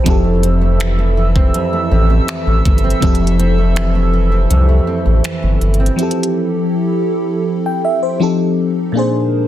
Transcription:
Already playing: nylon-string guitar E3 A3 C4
0.04 analog synth bass F1, nylon-string guitar F2, fm electric piano F3 C4 E4, analog synth pad A4 E5 E6, kick, closed hi-hat
0.09 fm electric piano G4 A4
0.24 nylon-string guitar A3
0.43 nylon-string guitar C4, closed hi-hat
0.61 nylon-string guitar A3
0.80 nylon-string guitar E3, finger snap, closed hi-hat
0.99 nylon-string guitar A3
1.17 nylon-string guitar E3
1.36 nylon-string guitar C4, kick
1.54 nylon-string guitar F2, closed hi-hat
1.73 nylon-string guitar A3
1.91 analog synth bass A1, nylon-string guitar C4
2.10 nylon-string guitar A3
2.28 nylon-string guitar E3, finger snap, closed hi-hat
2.47 analog synth bass A1, nylon-string guitar A3
2.65 analog synth bass G1, nylon-string guitar E3, kick, closed hi-hat
2.78 closed hi-hat
2.84 nylon-string guitar C4
2.90 closed hi-hat
3.00 analog synth bass F1, nylon-string guitar F2, fm electric piano F3 C4 E4, kick, closed hi-hat
3.05 fm electric piano G4 A4
3.15 closed hi-hat
3.21 nylon-string guitar A3
3.27 closed hi-hat
3.39 nylon-string guitar C4, closed hi-hat
3.58 nylon-string guitar A3
3.76 nylon-string guitar E3, finger snap, closed hi-hat
3.95 nylon-string guitar A3
4.13 nylon-string guitar E3
4.32 nylon-string guitar C4
4.50 analog synth bass C2, nylon-string guitar F2, closed hi-hat
4.69 nylon-string guitar A3
4.87 nylon-string guitar C4
5.06 analog synth bass A1, nylon-string guitar A3
5.24 nylon-string guitar E3, finger snap, closed hi-hat
5.43 analog synth bass G1, nylon-string guitar A3
5.61 analog synth bass G1, nylon-string guitar E3, closed hi-hat
5.74 closed hi-hat
5.80 nylon-string guitar C4
5.86 closed hi-hat
5.96 fm electric piano F3 C4 E4, analog synth pad F3 E4 G4 A4, closed hi-hat
6.01 fm electric piano G4 A4
6.11 closed hi-hat
6.23 closed hi-hat
7.66 fm electric piano G5
7.85 fm electric piano E5
8.03 fm electric piano C5
8.20 fm electric piano F3 C4 D#4 G4 A4, analog synth pad D#4
8.92 fm electric piano A#2 A#3 D4, analog synth pad G#3 D4 A#4
8.97 fm electric piano G#4 C5

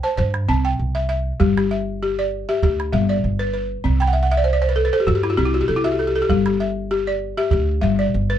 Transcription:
Already playing: balafon G5
0.03 balafon C5 A5
0.17 upright bass G2, balafon C5, calabash thump
0.34 calabash click
0.49 upright bass C2, balafon C4 A5
0.65 balafon G5
0.79 upright bass C2
0.95 balafon E5, calabash click
1.09 balafon E5, calabash click
1.40 upright bass G1, balafon G3 G4, calabash thump
1.57 balafon G4, calabash click
1.71 balafon E5
2.03 balafon G4
2.19 balafon D5
2.49 balafon G4 E5
2.63 upright bass D2, balafon G4, calabash thump
2.80 calabash click
2.93 upright bass G1, balafon G3 E5
3.09 balafon D5
3.24 upright bass G1
3.39 balafon B4
3.54 balafon B4
3.84 upright bass C2, balafon C4, calabash thump
4.00 balafon G5, calabash click
4.07 balafon F#5
4.13 balafon E5
4.23 balafon F#5
4.32 balafon E5
4.37 balafon D5
4.44 balafon C5
4.53 balafon D5
4.62 balafon C5
4.69 balafon B4
4.76 balafon A4
4.85 balafon B4
4.93 balafon A4 C5
5.00 balafon G4
5.07 upright bass G2, balafon F#4, calabash thump
5.15 balafon G4
5.23 balafon E4, calabash click
5.30 balafon F#4
5.37 upright bass C2, balafon C4 G4
5.45 balafon E4
5.54 balafon F#4
5.61 balafon G4
5.68 upright bass C2, balafon A4
5.76 balafon E4
5.84 balafon F#4 E5
5.92 balafon G4
5.99 balafon A4
6.07 balafon G4
6.16 balafon A4
6.22 balafon G4
6.29 upright bass G1, balafon G3 G4, calabash thump
6.46 balafon G4, calabash click
6.60 balafon E5
6.91 balafon G4
7.07 balafon D5
7.37 balafon G4 E5
7.51 upright bass D2, balafon G4, calabash thump
7.81 upright bass G1, balafon G3 E5
7.99 balafon D5
8.14 upright bass G1
8.30 balafon B4

